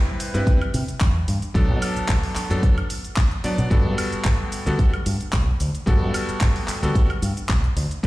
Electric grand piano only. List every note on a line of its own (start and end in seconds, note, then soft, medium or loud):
0.00 0.30 G3 loud
0.00 0.31 C4 medium
0.00 0.31 E4 medium
0.00 0.31 B4 loud
0.34 0.58 G3 medium
0.34 0.58 C4 medium
0.34 0.58 E4 medium
0.34 0.58 B4 loud
1.54 2.47 F#3 loud
1.54 2.47 B3 medium
1.54 2.47 D4 medium
1.54 2.48 A4 loud
2.50 2.74 F#3 medium
2.50 2.74 B3 medium
2.50 2.74 D4 medium
2.50 2.74 A4 loud
3.44 3.68 F#3 medium
3.44 3.68 B3 medium
3.44 3.68 D4 medium
3.44 3.69 D5 medium
3.70 4.63 G3 loud
3.70 4.63 B3 medium
3.70 4.63 F#4 medium
3.70 4.64 A4 loud
4.66 4.90 G3 medium
4.66 4.90 B3 medium
4.66 4.90 F#4 medium
4.66 4.90 A4 loud
5.86 6.79 G3 loud
5.86 6.79 B3 medium
5.86 6.79 F#4 medium
5.86 6.80 A4 loud
6.82 7.06 G3 medium
6.82 7.06 B3 medium
6.82 7.07 F#4 medium
6.82 7.07 A4 loud
8.03 8.07 G3 loud
8.03 8.07 C4 medium